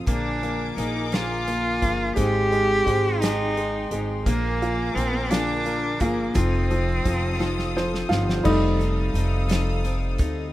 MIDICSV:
0, 0, Header, 1, 7, 480
1, 0, Start_track
1, 0, Tempo, 698487
1, 51, Time_signature, 6, 3, 24, 8
1, 7235, End_track
2, 0, Start_track
2, 0, Title_t, "String section"
2, 0, Program_c, 0, 48
2, 40, Note_on_c, 0, 70, 64
2, 40, Note_on_c, 0, 80, 63
2, 44, Note_on_c, 0, 86, 83
2, 1471, Note_off_c, 0, 70, 0
2, 1471, Note_off_c, 0, 80, 0
2, 1473, Note_off_c, 0, 86, 0
2, 1488, Note_on_c, 0, 84, 72
2, 1491, Note_on_c, 0, 56, 68
2, 1494, Note_on_c, 0, 79, 65
2, 2915, Note_off_c, 0, 84, 0
2, 2916, Note_off_c, 0, 56, 0
2, 2918, Note_off_c, 0, 79, 0
2, 2932, Note_on_c, 0, 80, 66
2, 2935, Note_on_c, 0, 70, 75
2, 2936, Note_on_c, 0, 86, 81
2, 4356, Note_off_c, 0, 80, 0
2, 4357, Note_off_c, 0, 70, 0
2, 4358, Note_off_c, 0, 86, 0
2, 4372, Note_on_c, 0, 77, 64
2, 4374, Note_on_c, 0, 87, 89
2, 4375, Note_on_c, 0, 69, 76
2, 5784, Note_off_c, 0, 69, 0
2, 5790, Note_off_c, 0, 87, 0
2, 5791, Note_off_c, 0, 77, 0
2, 5793, Note_on_c, 0, 69, 73
2, 5798, Note_on_c, 0, 87, 80
2, 5799, Note_on_c, 0, 77, 68
2, 7225, Note_off_c, 0, 69, 0
2, 7228, Note_off_c, 0, 87, 0
2, 7229, Note_off_c, 0, 77, 0
2, 7235, End_track
3, 0, Start_track
3, 0, Title_t, "Cello"
3, 0, Program_c, 1, 42
3, 68, Note_on_c, 1, 62, 80
3, 512, Note_off_c, 1, 62, 0
3, 537, Note_on_c, 1, 63, 75
3, 781, Note_on_c, 1, 65, 87
3, 791, Note_off_c, 1, 63, 0
3, 1483, Note_off_c, 1, 65, 0
3, 1488, Note_on_c, 1, 67, 104
3, 2197, Note_on_c, 1, 63, 89
3, 2207, Note_off_c, 1, 67, 0
3, 2744, Note_off_c, 1, 63, 0
3, 2918, Note_on_c, 1, 58, 93
3, 3400, Note_on_c, 1, 60, 84
3, 3410, Note_off_c, 1, 58, 0
3, 3640, Note_on_c, 1, 62, 84
3, 3650, Note_off_c, 1, 60, 0
3, 4125, Note_on_c, 1, 58, 76
3, 4135, Note_off_c, 1, 62, 0
3, 4364, Note_on_c, 1, 60, 79
3, 4374, Note_off_c, 1, 58, 0
3, 5326, Note_off_c, 1, 60, 0
3, 7235, End_track
4, 0, Start_track
4, 0, Title_t, "Steel-string acoustic guitar"
4, 0, Program_c, 2, 25
4, 44, Note_on_c, 2, 46, 74
4, 47, Note_on_c, 2, 50, 66
4, 52, Note_on_c, 2, 53, 70
4, 53, Note_on_c, 2, 58, 68
4, 55, Note_on_c, 2, 68, 76
4, 56, Note_on_c, 2, 62, 75
4, 516, Note_off_c, 2, 53, 0
4, 524, Note_off_c, 2, 58, 0
4, 524, Note_on_c, 2, 53, 48
4, 527, Note_off_c, 2, 46, 0
4, 529, Note_off_c, 2, 50, 0
4, 533, Note_off_c, 2, 62, 0
4, 533, Note_on_c, 2, 58, 53
4, 539, Note_off_c, 2, 68, 0
4, 542, Note_on_c, 2, 68, 57
4, 760, Note_off_c, 2, 68, 0
4, 765, Note_off_c, 2, 53, 0
4, 765, Note_off_c, 2, 58, 0
4, 768, Note_on_c, 2, 68, 55
4, 770, Note_on_c, 2, 62, 50
4, 773, Note_on_c, 2, 58, 51
4, 774, Note_on_c, 2, 53, 49
4, 776, Note_on_c, 2, 50, 54
4, 779, Note_on_c, 2, 46, 43
4, 1243, Note_off_c, 2, 68, 0
4, 1245, Note_on_c, 2, 68, 46
4, 1247, Note_off_c, 2, 62, 0
4, 1252, Note_off_c, 2, 53, 0
4, 1252, Note_off_c, 2, 58, 0
4, 1253, Note_off_c, 2, 50, 0
4, 1255, Note_off_c, 2, 46, 0
4, 1255, Note_on_c, 2, 62, 48
4, 1259, Note_on_c, 2, 58, 45
4, 1264, Note_on_c, 2, 53, 41
4, 1482, Note_off_c, 2, 53, 0
4, 1485, Note_on_c, 2, 56, 73
4, 1486, Note_off_c, 2, 58, 0
4, 1488, Note_off_c, 2, 68, 0
4, 1488, Note_on_c, 2, 60, 80
4, 1491, Note_off_c, 2, 62, 0
4, 1494, Note_on_c, 2, 63, 78
4, 1496, Note_on_c, 2, 67, 77
4, 1967, Note_off_c, 2, 56, 0
4, 1967, Note_off_c, 2, 60, 0
4, 1970, Note_on_c, 2, 56, 50
4, 1972, Note_off_c, 2, 63, 0
4, 1973, Note_off_c, 2, 67, 0
4, 1975, Note_on_c, 2, 60, 62
4, 1981, Note_on_c, 2, 63, 54
4, 1985, Note_on_c, 2, 67, 53
4, 2205, Note_off_c, 2, 67, 0
4, 2209, Note_off_c, 2, 63, 0
4, 2210, Note_off_c, 2, 56, 0
4, 2213, Note_off_c, 2, 60, 0
4, 2213, Note_on_c, 2, 67, 60
4, 2217, Note_on_c, 2, 63, 51
4, 2221, Note_on_c, 2, 60, 50
4, 2223, Note_on_c, 2, 56, 51
4, 2679, Note_off_c, 2, 67, 0
4, 2687, Note_on_c, 2, 67, 50
4, 2691, Note_off_c, 2, 63, 0
4, 2695, Note_off_c, 2, 60, 0
4, 2699, Note_on_c, 2, 63, 49
4, 2706, Note_on_c, 2, 60, 43
4, 2708, Note_off_c, 2, 56, 0
4, 2929, Note_off_c, 2, 67, 0
4, 2930, Note_on_c, 2, 46, 66
4, 2933, Note_on_c, 2, 50, 75
4, 2935, Note_off_c, 2, 60, 0
4, 2935, Note_off_c, 2, 63, 0
4, 2936, Note_on_c, 2, 53, 82
4, 2938, Note_on_c, 2, 58, 77
4, 2942, Note_on_c, 2, 62, 82
4, 2943, Note_on_c, 2, 68, 76
4, 3405, Note_off_c, 2, 53, 0
4, 3407, Note_off_c, 2, 58, 0
4, 3408, Note_on_c, 2, 53, 58
4, 3410, Note_off_c, 2, 46, 0
4, 3412, Note_off_c, 2, 50, 0
4, 3412, Note_off_c, 2, 62, 0
4, 3415, Note_on_c, 2, 58, 52
4, 3417, Note_off_c, 2, 68, 0
4, 3420, Note_on_c, 2, 62, 58
4, 3424, Note_on_c, 2, 68, 59
4, 3639, Note_off_c, 2, 68, 0
4, 3643, Note_off_c, 2, 62, 0
4, 3647, Note_off_c, 2, 58, 0
4, 3647, Note_on_c, 2, 68, 53
4, 3649, Note_off_c, 2, 53, 0
4, 3651, Note_on_c, 2, 62, 65
4, 3655, Note_on_c, 2, 58, 50
4, 3656, Note_on_c, 2, 53, 55
4, 3658, Note_on_c, 2, 46, 49
4, 3658, Note_on_c, 2, 50, 47
4, 4117, Note_off_c, 2, 68, 0
4, 4124, Note_off_c, 2, 62, 0
4, 4125, Note_on_c, 2, 68, 53
4, 4128, Note_off_c, 2, 58, 0
4, 4132, Note_on_c, 2, 62, 54
4, 4134, Note_off_c, 2, 46, 0
4, 4134, Note_off_c, 2, 50, 0
4, 4136, Note_on_c, 2, 58, 46
4, 4139, Note_off_c, 2, 53, 0
4, 4142, Note_on_c, 2, 53, 42
4, 4351, Note_off_c, 2, 53, 0
4, 4359, Note_on_c, 2, 53, 80
4, 4363, Note_off_c, 2, 58, 0
4, 4365, Note_off_c, 2, 62, 0
4, 4366, Note_on_c, 2, 60, 78
4, 4367, Note_off_c, 2, 68, 0
4, 4368, Note_on_c, 2, 63, 82
4, 4372, Note_on_c, 2, 69, 78
4, 4838, Note_off_c, 2, 53, 0
4, 4841, Note_on_c, 2, 53, 56
4, 4845, Note_off_c, 2, 60, 0
4, 4848, Note_on_c, 2, 60, 55
4, 4849, Note_off_c, 2, 63, 0
4, 4852, Note_on_c, 2, 63, 68
4, 4854, Note_off_c, 2, 69, 0
4, 4857, Note_on_c, 2, 69, 61
4, 5077, Note_off_c, 2, 69, 0
4, 5081, Note_off_c, 2, 63, 0
4, 5085, Note_off_c, 2, 53, 0
4, 5086, Note_off_c, 2, 60, 0
4, 5086, Note_on_c, 2, 69, 67
4, 5089, Note_on_c, 2, 63, 63
4, 5094, Note_on_c, 2, 60, 53
4, 5096, Note_on_c, 2, 53, 54
4, 5556, Note_off_c, 2, 69, 0
4, 5559, Note_on_c, 2, 69, 62
4, 5566, Note_off_c, 2, 63, 0
4, 5569, Note_on_c, 2, 63, 53
4, 5573, Note_off_c, 2, 60, 0
4, 5576, Note_on_c, 2, 60, 52
4, 5590, Note_off_c, 2, 53, 0
4, 5800, Note_off_c, 2, 60, 0
4, 5804, Note_off_c, 2, 69, 0
4, 5805, Note_off_c, 2, 63, 0
4, 5805, Note_on_c, 2, 53, 87
4, 5808, Note_on_c, 2, 60, 76
4, 5813, Note_on_c, 2, 63, 86
4, 5817, Note_on_c, 2, 69, 87
4, 6033, Note_off_c, 2, 69, 0
4, 6041, Note_on_c, 2, 69, 56
4, 6045, Note_off_c, 2, 63, 0
4, 6046, Note_off_c, 2, 53, 0
4, 6048, Note_off_c, 2, 60, 0
4, 6053, Note_on_c, 2, 63, 59
4, 6060, Note_on_c, 2, 60, 48
4, 6279, Note_off_c, 2, 60, 0
4, 6282, Note_on_c, 2, 53, 69
4, 6283, Note_off_c, 2, 63, 0
4, 6285, Note_off_c, 2, 69, 0
4, 6288, Note_on_c, 2, 60, 69
4, 6291, Note_on_c, 2, 63, 69
4, 6297, Note_on_c, 2, 69, 75
4, 6510, Note_off_c, 2, 69, 0
4, 6516, Note_off_c, 2, 63, 0
4, 6518, Note_off_c, 2, 60, 0
4, 6518, Note_on_c, 2, 69, 75
4, 6521, Note_off_c, 2, 53, 0
4, 6524, Note_on_c, 2, 63, 67
4, 6526, Note_on_c, 2, 60, 57
4, 6529, Note_on_c, 2, 53, 55
4, 6755, Note_off_c, 2, 53, 0
4, 6759, Note_off_c, 2, 60, 0
4, 6763, Note_off_c, 2, 69, 0
4, 6763, Note_on_c, 2, 53, 65
4, 6764, Note_off_c, 2, 63, 0
4, 6767, Note_on_c, 2, 60, 69
4, 6772, Note_on_c, 2, 63, 65
4, 6778, Note_on_c, 2, 69, 73
4, 6994, Note_off_c, 2, 69, 0
4, 7002, Note_on_c, 2, 69, 67
4, 7004, Note_off_c, 2, 63, 0
4, 7005, Note_off_c, 2, 53, 0
4, 7008, Note_off_c, 2, 60, 0
4, 7012, Note_on_c, 2, 63, 57
4, 7019, Note_on_c, 2, 60, 51
4, 7235, Note_off_c, 2, 60, 0
4, 7235, Note_off_c, 2, 63, 0
4, 7235, Note_off_c, 2, 69, 0
4, 7235, End_track
5, 0, Start_track
5, 0, Title_t, "Grand piano"
5, 0, Program_c, 3, 0
5, 0, Control_c, 3, 64, 127
5, 53, Note_on_c, 3, 58, 54
5, 61, Control_c, 3, 64, 0
5, 195, Control_c, 3, 64, 127
5, 286, Note_off_c, 3, 58, 0
5, 296, Note_on_c, 3, 58, 50
5, 527, Note_off_c, 3, 58, 0
5, 537, Note_on_c, 3, 58, 49
5, 763, Note_off_c, 3, 58, 0
5, 774, Note_on_c, 3, 58, 51
5, 1004, Note_off_c, 3, 58, 0
5, 1015, Note_on_c, 3, 58, 48
5, 1240, Note_off_c, 3, 58, 0
5, 1250, Note_on_c, 3, 58, 50
5, 1483, Note_off_c, 3, 58, 0
5, 1484, Note_on_c, 3, 56, 58
5, 1500, Control_c, 3, 64, 0
5, 1604, Control_c, 3, 64, 127
5, 1721, Note_off_c, 3, 56, 0
5, 1731, Note_on_c, 3, 56, 56
5, 1956, Note_off_c, 3, 56, 0
5, 1966, Note_on_c, 3, 56, 49
5, 2202, Note_off_c, 3, 56, 0
5, 2212, Note_on_c, 3, 56, 51
5, 2444, Note_off_c, 3, 56, 0
5, 2454, Note_on_c, 3, 56, 48
5, 2683, Note_off_c, 3, 56, 0
5, 2693, Note_on_c, 3, 56, 52
5, 2925, Note_off_c, 3, 56, 0
5, 2931, Note_on_c, 3, 58, 61
5, 2940, Control_c, 3, 64, 0
5, 3046, Control_c, 3, 64, 127
5, 3176, Note_on_c, 3, 65, 53
5, 3401, Note_off_c, 3, 58, 0
5, 3411, Note_on_c, 3, 58, 47
5, 3639, Note_off_c, 3, 65, 0
5, 3649, Note_on_c, 3, 65, 49
5, 3876, Note_off_c, 3, 58, 0
5, 3886, Note_on_c, 3, 58, 48
5, 4120, Note_off_c, 3, 65, 0
5, 4131, Note_on_c, 3, 65, 50
5, 4353, Note_off_c, 3, 58, 0
5, 4363, Note_off_c, 3, 65, 0
5, 4364, Note_on_c, 3, 53, 59
5, 4379, Control_c, 3, 64, 0
5, 4487, Control_c, 3, 64, 127
5, 4598, Note_off_c, 3, 53, 0
5, 4608, Note_on_c, 3, 53, 51
5, 4838, Note_off_c, 3, 53, 0
5, 4849, Note_on_c, 3, 53, 48
5, 5076, Note_off_c, 3, 53, 0
5, 5087, Note_on_c, 3, 53, 55
5, 5326, Note_off_c, 3, 53, 0
5, 5336, Note_on_c, 3, 53, 52
5, 5337, Note_on_c, 3, 72, 66
5, 5548, Note_off_c, 3, 53, 0
5, 5556, Note_off_c, 3, 72, 0
5, 5558, Note_on_c, 3, 53, 54
5, 5560, Note_on_c, 3, 77, 70
5, 5787, Note_off_c, 3, 77, 0
5, 5796, Note_off_c, 3, 53, 0
5, 5797, Note_on_c, 3, 55, 53
5, 5803, Note_on_c, 3, 57, 48
5, 5807, Note_on_c, 3, 63, 57
5, 5818, Control_c, 3, 64, 0
5, 5952, Control_c, 3, 64, 127
5, 6495, Note_off_c, 3, 55, 0
5, 6498, Note_off_c, 3, 57, 0
5, 6500, Note_off_c, 3, 63, 0
5, 7235, End_track
6, 0, Start_track
6, 0, Title_t, "Upright bass"
6, 0, Program_c, 4, 32
6, 48, Note_on_c, 4, 34, 84
6, 502, Note_off_c, 4, 34, 0
6, 529, Note_on_c, 4, 34, 89
6, 1223, Note_off_c, 4, 34, 0
6, 1252, Note_on_c, 4, 31, 73
6, 1477, Note_off_c, 4, 31, 0
6, 1491, Note_on_c, 4, 32, 93
6, 1943, Note_off_c, 4, 32, 0
6, 1971, Note_on_c, 4, 32, 91
6, 2663, Note_off_c, 4, 32, 0
6, 2687, Note_on_c, 4, 32, 80
6, 2914, Note_off_c, 4, 32, 0
6, 2929, Note_on_c, 4, 34, 96
6, 3382, Note_off_c, 4, 34, 0
6, 3406, Note_on_c, 4, 34, 92
6, 4100, Note_off_c, 4, 34, 0
6, 4129, Note_on_c, 4, 31, 83
6, 4355, Note_off_c, 4, 31, 0
6, 4364, Note_on_c, 4, 29, 99
6, 4819, Note_off_c, 4, 29, 0
6, 4848, Note_on_c, 4, 29, 84
6, 5541, Note_off_c, 4, 29, 0
6, 5563, Note_on_c, 4, 31, 96
6, 5792, Note_off_c, 4, 31, 0
6, 5806, Note_on_c, 4, 29, 96
6, 6260, Note_off_c, 4, 29, 0
6, 6280, Note_on_c, 4, 29, 93
6, 6976, Note_off_c, 4, 29, 0
6, 7002, Note_on_c, 4, 38, 88
6, 7230, Note_off_c, 4, 38, 0
6, 7235, End_track
7, 0, Start_track
7, 0, Title_t, "Drums"
7, 50, Note_on_c, 9, 36, 99
7, 50, Note_on_c, 9, 42, 74
7, 118, Note_off_c, 9, 42, 0
7, 119, Note_off_c, 9, 36, 0
7, 294, Note_on_c, 9, 42, 38
7, 363, Note_off_c, 9, 42, 0
7, 536, Note_on_c, 9, 42, 74
7, 604, Note_off_c, 9, 42, 0
7, 770, Note_on_c, 9, 42, 75
7, 783, Note_on_c, 9, 38, 103
7, 839, Note_off_c, 9, 42, 0
7, 851, Note_off_c, 9, 38, 0
7, 1013, Note_on_c, 9, 42, 52
7, 1082, Note_off_c, 9, 42, 0
7, 1252, Note_on_c, 9, 42, 62
7, 1253, Note_on_c, 9, 36, 80
7, 1321, Note_off_c, 9, 42, 0
7, 1322, Note_off_c, 9, 36, 0
7, 1491, Note_on_c, 9, 42, 77
7, 1493, Note_on_c, 9, 36, 95
7, 1559, Note_off_c, 9, 42, 0
7, 1561, Note_off_c, 9, 36, 0
7, 1734, Note_on_c, 9, 42, 40
7, 1803, Note_off_c, 9, 42, 0
7, 1972, Note_on_c, 9, 36, 81
7, 1976, Note_on_c, 9, 42, 70
7, 2040, Note_off_c, 9, 36, 0
7, 2044, Note_off_c, 9, 42, 0
7, 2212, Note_on_c, 9, 42, 88
7, 2224, Note_on_c, 9, 38, 97
7, 2281, Note_off_c, 9, 42, 0
7, 2293, Note_off_c, 9, 38, 0
7, 2454, Note_on_c, 9, 42, 49
7, 2523, Note_off_c, 9, 42, 0
7, 2688, Note_on_c, 9, 42, 69
7, 2757, Note_off_c, 9, 42, 0
7, 2930, Note_on_c, 9, 36, 109
7, 2930, Note_on_c, 9, 42, 78
7, 2998, Note_off_c, 9, 36, 0
7, 2999, Note_off_c, 9, 42, 0
7, 3176, Note_on_c, 9, 42, 45
7, 3245, Note_off_c, 9, 42, 0
7, 3417, Note_on_c, 9, 42, 74
7, 3486, Note_off_c, 9, 42, 0
7, 3647, Note_on_c, 9, 42, 86
7, 3659, Note_on_c, 9, 38, 103
7, 3716, Note_off_c, 9, 42, 0
7, 3728, Note_off_c, 9, 38, 0
7, 3888, Note_on_c, 9, 42, 48
7, 3957, Note_off_c, 9, 42, 0
7, 4124, Note_on_c, 9, 42, 66
7, 4129, Note_on_c, 9, 36, 86
7, 4192, Note_off_c, 9, 42, 0
7, 4198, Note_off_c, 9, 36, 0
7, 4363, Note_on_c, 9, 42, 88
7, 4367, Note_on_c, 9, 36, 110
7, 4432, Note_off_c, 9, 42, 0
7, 4436, Note_off_c, 9, 36, 0
7, 4609, Note_on_c, 9, 42, 42
7, 4678, Note_off_c, 9, 42, 0
7, 4848, Note_on_c, 9, 36, 84
7, 4848, Note_on_c, 9, 42, 69
7, 4917, Note_off_c, 9, 36, 0
7, 4917, Note_off_c, 9, 42, 0
7, 5095, Note_on_c, 9, 38, 52
7, 5164, Note_off_c, 9, 38, 0
7, 5215, Note_on_c, 9, 38, 50
7, 5284, Note_off_c, 9, 38, 0
7, 5338, Note_on_c, 9, 38, 69
7, 5407, Note_off_c, 9, 38, 0
7, 5459, Note_on_c, 9, 38, 68
7, 5528, Note_off_c, 9, 38, 0
7, 5576, Note_on_c, 9, 38, 92
7, 5645, Note_off_c, 9, 38, 0
7, 5699, Note_on_c, 9, 38, 81
7, 5768, Note_off_c, 9, 38, 0
7, 5808, Note_on_c, 9, 36, 104
7, 5808, Note_on_c, 9, 49, 92
7, 5877, Note_off_c, 9, 36, 0
7, 5877, Note_off_c, 9, 49, 0
7, 6053, Note_on_c, 9, 42, 40
7, 6121, Note_off_c, 9, 42, 0
7, 6290, Note_on_c, 9, 42, 84
7, 6359, Note_off_c, 9, 42, 0
7, 6524, Note_on_c, 9, 42, 91
7, 6536, Note_on_c, 9, 38, 102
7, 6593, Note_off_c, 9, 42, 0
7, 6605, Note_off_c, 9, 38, 0
7, 6766, Note_on_c, 9, 42, 53
7, 6834, Note_off_c, 9, 42, 0
7, 6998, Note_on_c, 9, 42, 73
7, 7005, Note_on_c, 9, 36, 90
7, 7067, Note_off_c, 9, 42, 0
7, 7074, Note_off_c, 9, 36, 0
7, 7235, End_track
0, 0, End_of_file